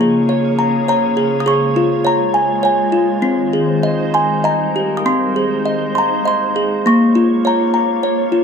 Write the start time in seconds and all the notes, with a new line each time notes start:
Already playing: C#3 A#3 G#4 C#5 A#5
0.01 G#4
0.29 C#5
0.59 A#5
0.88 C#5 A#5
1.17 G#4
1.40 D#6
1.45 G#3 F4 G#4 C#6
1.76 F4
2.05 C#5 A#5
2.34 G#5
2.63 C#5 G#5
2.92 F4
3.22 D#3 C4 D#4 C5
3.53 G#4
3.83 D#5
4.14 G#5 C6
4.44 G3 A#4 D#5 A#5
4.76 G4
4.97 D#6
5.04 G#3 C4 D#4 C5 C6
5.36 G#4
5.65 D#5
5.95 A#5 C6
6.25 D#5 C6
6.56 G#4
6.84 A#3 F4 C#5 C#6
7.15 F4
7.45 C#5 A#5
7.74 A#5
8.03 C#5
8.32 F4